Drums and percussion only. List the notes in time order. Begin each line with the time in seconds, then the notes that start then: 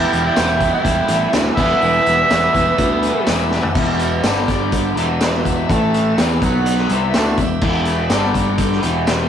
0.13 closed hi-hat
0.36 snare, closed hi-hat, tambourine
0.60 kick, closed hi-hat, tambourine
0.85 kick, closed hi-hat
1.08 closed hi-hat, tambourine
1.33 snare, closed hi-hat, tambourine
1.57 kick, tambourine, crash
1.82 tambourine
2.06 closed hi-hat
2.30 snare, closed hi-hat, tambourine
2.54 kick, closed hi-hat, tambourine
2.78 kick, closed hi-hat
3.02 closed hi-hat, tambourine
3.27 snare, closed hi-hat, tambourine
3.29 tambourine
3.51 snare, tambourine
3.63 floor tom
3.75 kick, crash
3.99 closed hi-hat, tambourine
4.23 snare, closed hi-hat, tambourine
4.48 kick, snare, closed hi-hat, tambourine
4.72 kick, closed hi-hat, tambourine
4.97 closed hi-hat
5.21 snare, closed hi-hat, tambourine
5.45 kick, closed hi-hat, tambourine
5.70 kick, closed hi-hat
5.94 closed hi-hat, tambourine
6.18 snare, closed hi-hat, tambourine
6.42 kick, closed hi-hat, tambourine
6.66 closed hi-hat, tambourine
6.77 snare
6.89 closed hi-hat
7.14 snare, closed hi-hat, tambourine
7.37 kick, closed hi-hat, tambourine
7.61 kick, crash
7.85 closed hi-hat, tambourine
8.10 snare, closed hi-hat, tambourine
8.34 kick, closed hi-hat, tambourine
8.58 kick, closed hi-hat, tambourine
8.72 snare
8.82 closed hi-hat
9.07 snare, closed hi-hat, tambourine